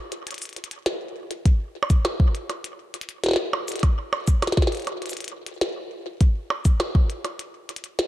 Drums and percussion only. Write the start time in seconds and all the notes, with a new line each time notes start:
0.12 closed hi-hat
0.27 closed hi-hat
0.31 closed hi-hat
0.34 closed hi-hat
0.38 closed hi-hat
0.42 closed hi-hat, shaker
0.45 closed hi-hat
0.49 closed hi-hat
0.53 closed hi-hat
0.56 closed hi-hat
0.64 closed hi-hat
0.71 closed hi-hat
0.86 snare, closed hi-hat
1.31 closed hi-hat
1.46 kick, closed hi-hat
1.83 percussion blips
1.90 kick, closed hi-hat, shaker
2.05 snare, closed hi-hat, percussion blips
2.20 kick
2.35 closed hi-hat
2.50 closed hi-hat, percussion blips
2.64 closed hi-hat
2.94 closed hi-hat
3.01 closed hi-hat
3.09 closed hi-hat
3.24 snare, closed hi-hat
3.26 snare
3.28 snare
3.31 snare
3.33 snare
3.36 snare
3.53 percussion blips
3.68 closed hi-hat, shaker
3.72 closed hi-hat
3.76 closed hi-hat
3.79 closed hi-hat
3.83 kick, closed hi-hat, percussion blips
4.13 percussion blips
4.28 kick, closed hi-hat, shaker
4.42 snare, closed hi-hat, percussion blips
4.47 snare, closed hi-hat
4.52 snare, closed hi-hat
4.57 kick, snare, closed hi-hat
4.62 snare, closed hi-hat
4.67 snare, closed hi-hat
4.72 closed hi-hat
4.75 closed hi-hat
4.77 closed hi-hat
4.80 closed hi-hat
4.82 closed hi-hat
4.85 closed hi-hat
4.87 closed hi-hat, percussion blips
5.02 closed hi-hat
5.06 closed hi-hat
5.09 closed hi-hat, shaker
5.13 closed hi-hat
5.17 closed hi-hat
5.20 closed hi-hat
5.24 closed hi-hat
5.28 closed hi-hat
5.46 closed hi-hat
5.61 snare, closed hi-hat
6.21 kick, closed hi-hat
6.50 percussion blips
6.65 kick, closed hi-hat, shaker
6.80 snare, closed hi-hat, percussion blips
6.95 kick
7.10 closed hi-hat
7.25 closed hi-hat, percussion blips
7.39 closed hi-hat
7.69 closed hi-hat
7.76 closed hi-hat
7.84 closed hi-hat
7.99 snare, closed hi-hat